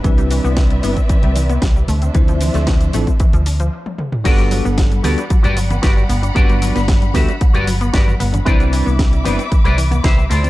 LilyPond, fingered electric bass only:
\new Staff \with { instrumentName = "Fingered electric bass" } { \clef bass \time 4/4 \key g \major \tempo 4 = 114 c,8. c,8. g,,16 r8 c,8. c,16 r16 d,16 r16 | d,8. d,8. a,,16 r8 d,8. r4 | g,,8. g,,8. d,16 r8 g,,8. g,,16 r16 g,,16 r16 | g,,8. g,,8. d,16 r8 g,,8. g,,16 r16 g,,16 r16 |
c,8. c,8. g,,16 r8 c,8. c,16 r16 d,16 r16 | }